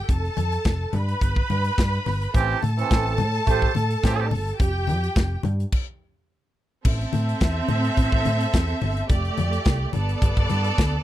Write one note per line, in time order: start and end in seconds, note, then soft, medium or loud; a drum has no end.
0.09 0.28 F1 loud
0.09 0.92 A4 medium
0.09 0.92 A5 medium
0.09 kick loud
0.09 closed hi-hat medium
0.09 muted conga soft
0.25 closed hi-hat soft
0.37 0.56 F2 medium
0.37 closed hi-hat medium
0.37 muted conga soft
0.37 high conga medium
0.52 closed hi-hat medium
0.65 0.85 F1 loud
0.65 kick loud
0.65 snare loud
0.65 closed hi-hat medium
0.65 muted conga soft
0.93 1.13 G2 loud
0.93 2.32 B4 medium
0.93 2.32 B5 medium
0.93 closed hi-hat medium
0.93 high conga medium
0.93 low conga medium
1.08 closed hi-hat soft
1.21 1.41 G1 loud
1.21 kick loud
1.21 closed hi-hat medium
1.36 kick loud
1.50 1.69 G2 medium
1.50 closed hi-hat medium
1.50 high conga medium
1.64 closed hi-hat medium
1.78 1.97 G2 loud
1.78 kick loud
1.78 snare loud
1.78 closed hi-hat medium
1.78 muted conga soft
1.93 closed hi-hat soft
2.06 2.26 G1 medium
2.06 snare soft
2.06 open hi-hat medium
2.06 muted conga soft
2.06 high conga medium
2.06 low conga medium
2.22 closed hi-hat medium
2.33 2.54 A1 loud
2.33 2.57 E3 loud
2.33 2.57 C4 loud
2.33 2.57 G4 loud
2.33 4.55 A4 medium
2.33 4.55 A5 loud
2.33 kick loud
2.33 closed hi-hat medium
2.33 muted conga soft
2.63 2.82 A2 loud
2.63 closed hi-hat medium
2.63 muted conga soft
2.63 high conga medium
2.77 3.17 E3 medium
2.77 3.16 C4 loud
2.77 3.16 A4 loud
2.77 closed hi-hat soft
2.91 3.21 A1 loud
2.91 kick loud
2.91 snare loud
2.91 closed hi-hat medium
3.07 closed hi-hat soft
3.18 3.38 A2 loud
3.18 closed hi-hat medium
3.18 muted conga soft
3.18 high conga medium
3.18 low conga medium
3.35 closed hi-hat soft
3.46 3.66 A1 loud
3.46 3.70 A3 loud
3.46 3.70 G4 loud
3.46 3.70 C5 loud
3.46 kick medium
3.46 closed hi-hat medium
3.46 muted conga soft
3.62 kick loud
3.75 3.95 A2 loud
3.75 closed hi-hat medium
3.75 muted conga soft
3.75 high conga medium
3.91 closed hi-hat medium
4.03 4.33 A2 loud
4.03 4.26 E3 medium
4.03 4.26 C4 medium
4.03 4.26 G4 medium
4.03 kick loud
4.03 snare loud
4.03 closed hi-hat loud
4.03 muted conga soft
4.31 4.51 G1 medium
4.31 open hi-hat medium
4.31 muted conga soft
4.31 high conga medium
4.31 low conga medium
4.48 closed hi-hat soft
4.59 4.90 F1 loud
4.59 5.42 G4 medium
4.59 5.42 G5 medium
4.59 kick loud
4.59 closed hi-hat medium
4.59 muted conga soft
4.59 low conga medium
4.87 5.08 F2 medium
4.87 closed hi-hat medium
4.87 high conga medium
5.04 closed hi-hat soft
5.16 5.35 F1 loud
5.16 kick loud
5.16 snare loud
5.16 closed hi-hat medium
5.16 muted conga soft
5.43 5.64 G2 loud
5.43 closed hi-hat medium
5.43 muted conga soft
5.43 high conga medium
5.43 low conga medium
5.60 closed hi-hat soft
5.72 kick medium
5.72 crash medium
6.85 7.04 A1 loud
6.85 9.06 C4 loud
6.85 9.06 A4 medium
6.85 9.06 E5 loud
6.85 kick loud
6.85 crash loud
6.85 low conga medium
7.01 closed hi-hat soft
7.13 7.33 A2 medium
7.13 closed hi-hat medium
7.13 muted conga soft
7.13 high conga medium
7.29 closed hi-hat medium
7.41 7.60 E2 medium
7.41 kick loud
7.41 snare loud
7.41 closed hi-hat medium
7.41 muted conga soft
7.68 7.89 A2 loud
7.68 closed hi-hat medium
7.68 muted conga soft
7.68 high conga medium
7.68 low conga medium
7.84 closed hi-hat soft
7.97 8.08 A1 loud
7.97 kick loud
7.97 closed hi-hat medium
7.97 muted conga soft
8.12 8.22 A1 medium
8.12 kick loud
8.25 8.45 A2 medium
8.25 closed hi-hat medium
8.25 muted conga soft
8.25 high conga medium
8.40 closed hi-hat medium
8.53 8.73 E2 loud
8.53 kick loud
8.53 snare loud
8.53 closed hi-hat medium
8.53 muted conga soft
8.68 closed hi-hat soft
8.81 9.01 G1 medium
8.81 open hi-hat medium
8.81 muted conga soft
8.81 high conga medium
8.81 low conga medium
8.97 closed hi-hat medium
9.09 9.29 F1 loud
9.09 9.92 A3 medium
9.09 9.92 G4 medium
9.09 9.92 D5 medium
9.09 kick loud
9.09 closed hi-hat medium
9.09 muted conga soft
9.09 low conga medium
9.25 closed hi-hat soft
9.38 9.57 F2 medium
9.38 closed hi-hat medium
9.38 muted conga soft
9.38 high conga medium
9.53 closed hi-hat medium
9.65 9.85 C2 loud
9.65 kick loud
9.65 snare loud
9.65 closed hi-hat medium
9.93 10.14 G1 loud
9.93 11.03 B3 medium
9.93 11.03 A4 medium
9.93 11.03 D5 loud
9.93 closed hi-hat medium
9.93 muted conga soft
9.93 high conga medium
9.93 low conga medium
10.09 closed hi-hat soft
10.22 10.32 G1 loud
10.22 kick loud
10.22 closed hi-hat medium
10.37 10.46 G1 loud
10.37 kick loud
10.37 closed hi-hat soft
10.49 10.70 G2 loud
10.49 closed hi-hat medium
10.49 muted conga soft
10.49 high conga medium
10.64 closed hi-hat medium
10.78 10.97 D2 medium
10.78 kick loud
10.78 snare loud
10.78 closed hi-hat loud